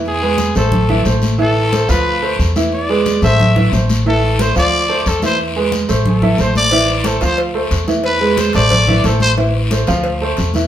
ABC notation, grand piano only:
X:1
M:4/4
L:1/8
Q:1/4=180
K:Am
V:1 name="Grand piano"
[E,Ee] [^G,^GB]2 [A,Ac]2 [E,Ee] [A,Ac]2 | [E,Ee]2 [A,Ac] [F,Ff]2 [A,Ac]2 [E,Ee]- | [E,Ee] [^G,^GB]2 [A,Ac]2 [E,Ee] [A,Ac]2 | [E,Ee]2 [A,Ac] [F,Ff]2 [A,Ac]2 [E,Ee]- |
[E,Ee] [^G,^GB]2 [A,Ac]2 [E,Ee] [A,Ac]2 | [E,Ee]2 [A,Ac] [F,Ff]2 [A,Ac]2 [E,Ee]- | [E,Ee] [^G,^GB]2 [A,Ac]2 [E,Ee] [A,Ac]2 | [E,Ee]2 [A,Ac] [F,Ff]2 [A,Ac]2 [E,Ee] |]